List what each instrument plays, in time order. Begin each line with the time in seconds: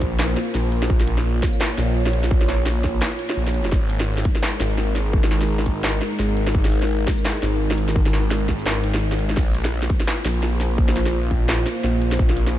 Already playing: detuned saw bass A#1, analog synth pad A#3 F4 C5
0.02 kick, closed hi-hat
0.19 snare
0.37 snare, closed hi-hat
0.55 detuned saw bass A#1, snare
0.72 closed hi-hat
0.82 snare
0.90 detuned saw bass A#1, analog synth pad C#5, kick
1.00 snare
1.08 closed hi-hat
1.18 snare
1.43 kick, snare, closed hi-hat
1.53 tambourine
1.61 snare
1.78 detuned saw bass A#1, snare, closed hi-hat
2.06 snare
2.13 closed hi-hat
2.24 snare
2.31 kick
2.41 snare, tambourine
2.49 detuned saw bass A#1, snare, closed hi-hat
2.66 snare
2.84 kick, snare, closed hi-hat
3.02 snare
3.19 closed hi-hat
3.30 snare
3.37 detuned saw bass A#1
3.47 snare
3.54 closed hi-hat
3.65 snare
3.72 detuned saw bass G#1, analog synth pad G#3 D#4 A#4, kick, snare
3.90 closed hi-hat
4.00 snare
4.18 snare
4.25 kick, closed hi-hat
4.35 snare, tambourine
4.43 snare
4.60 detuned saw bass G#1, snare, closed hi-hat
4.78 snare
4.96 snare, closed hi-hat
5.13 kick
5.24 snare, tambourine
5.31 detuned saw bass G#1, snare, closed hi-hat
5.41 snare
5.59 snare
5.66 kick, closed hi-hat
5.84 snare
6.01 snare
6.19 detuned saw bass G#1, snare
6.37 closed hi-hat
6.47 snare
6.55 detuned saw bass G#1, kick
6.65 snare
6.72 closed hi-hat
6.82 snare
7.08 kick, snare, closed hi-hat
7.18 tambourine
7.25 snare
7.43 detuned saw bass G#1, snare, closed hi-hat
7.71 snare
7.78 closed hi-hat
7.88 snare
7.96 kick
8.06 snare, tambourine
8.13 detuned saw bass G#1, snare, closed hi-hat
8.31 snare
8.49 kick, snare, closed hi-hat
8.59 tambourine
8.66 snare
8.84 detuned saw bass G#1, closed hi-hat
8.94 snare, closed hi-hat
9.12 snare
9.19 closed hi-hat
9.29 snare
9.37 detuned saw bass A#1, analog synth pad A#3 F4 C5, kick, snare, crash
9.55 closed hi-hat
9.65 snare
9.82 snare
9.90 kick, closed hi-hat
10.00 snare, tambourine
10.08 snare
10.25 detuned saw bass A#1, snare, closed hi-hat
10.43 snare
10.61 snare, closed hi-hat
10.78 kick
10.89 snare, tambourine
10.96 detuned saw bass A#1, snare, closed hi-hat
11.06 snare
11.31 kick, closed hi-hat
11.49 snare
11.66 snare, closed hi-hat
11.84 detuned saw bass A#1, snare
12.02 closed hi-hat
12.12 snare
12.19 detuned saw bass A#1, kick
12.29 snare
12.37 closed hi-hat
12.47 snare